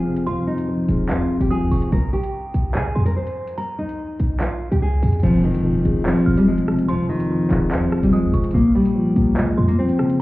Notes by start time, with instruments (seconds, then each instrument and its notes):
Already playing: 808-style bass F1, grand piano F2 F3 G#3 C4, nylon-string guitar G#4
0.06 grand piano C3
0.16 closed hi-hat
0.27 808-style bass F2, grand piano F2, nylon-string guitar F4, synth bell C6, closed hi-hat
0.47 nylon-string guitar D#4
0.58 closed hi-hat
0.68 grand piano F3
0.88 808-style bass D#1, grand piano G#3, closed hi-hat
1.09 808-style bass F2, grand piano C4, nylon-string guitar F4, clap, closed hi-hat
1.25 808-style bass D#1
1.40 808-style bass F1, nylon-string guitar G4, closed hi-hat
1.51 grand piano F3, nylon-string guitar G#4, synth bell D#6
1.61 808-style bass F2
1.71 808-style bass F1, grand piano C3, synth bell C#6, open hi-hat
1.82 closed hi-hat
1.92 808-style bass A#1, nylon-string guitar A#4, closed hi-hat
2.13 nylon-string guitar G4
2.23 closed hi-hat
2.54 808-style bass A#1, closed hi-hat
2.75 808-style bass C#3, nylon-string guitar G#4, clap
2.85 808-style bass A#1
2.95 808-style bass F2, synth bell C6
3.06 nylon-string guitar A#4, closed hi-hat
3.17 nylon-string guitar C5
3.27 closed hi-hat
3.47 closed hi-hat
3.58 nylon-string guitar A#4, synth bell A#5, closed hi-hat
3.78 808-style bass C#2, nylon-string guitar D#4
3.89 closed hi-hat
3.99 808-style bass F2
4.20 808-style bass A#1, closed hi-hat
4.40 nylon-string guitar F4, clap, closed hi-hat
4.71 808-style bass C#2, nylon-string guitar G4, closed hi-hat
4.82 nylon-string guitar G#4
4.92 808-style bass C2
5.03 808-style bass F2, open hi-hat
5.13 closed hi-hat
5.20 grand piano F2, closed hi-hat, impact
5.23 808-style bass F1, nylon-string guitar F3, closed hi-hat, crash
5.27 closed hi-hat
5.44 nylon-string guitar D#3
5.54 closed hi-hat
5.65 grand piano F3
5.85 808-style bass F1, grand piano G#3, closed hi-hat
6.06 nylon-string guitar F3, grand piano C4, clap
6.26 808-style bass F1, synth bell F6
6.37 nylon-string guitar G3, closed hi-hat
6.47 grand piano F3, nylon-string guitar G#3
6.58 closed hi-hat
6.68 grand piano C3, cross-stick
6.79 closed hi-hat
6.89 808-style bass F2, grand piano F2, nylon-string guitar F3, synth bell C6, closed hi-hat
7.09 nylon-string guitar D#3
7.20 closed hi-hat
7.31 grand piano F3
7.51 808-style bass D#1, grand piano G#3, clap, closed hi-hat
7.71 808-style bass F2, nylon-string guitar F3, grand piano C4, clap, closed hi-hat
7.87 808-style bass D#1
7.92 cross-stick
8.03 808-style bass F1, nylon-string guitar G3, closed hi-hat
8.13 grand piano F3, nylon-string guitar G#3, synth bell D#6
8.23 808-style bass F2
8.33 808-style bass F1, grand piano C3, synth bell C#6, closed hi-hat
8.44 closed hi-hat
8.51 808-style bass A#1, grand piano A#2, nylon-string guitar A#3, closed hi-hat
8.58 closed hi-hat
8.75 nylon-string guitar G3
8.86 closed hi-hat
8.95 grand piano F3
9.16 808-style bass A#1, grand piano A#3, closed hi-hat
9.37 808-style bass C#3, nylon-string guitar G#3, grand piano F4, clap
9.47 808-style bass A#1
9.57 808-style bass F2, synth bell C6
9.68 nylon-string guitar A#3, closed hi-hat
9.78 grand piano F3, nylon-string guitar C4
9.89 closed hi-hat
9.99 grand piano C#3, cross-stick
10.10 closed hi-hat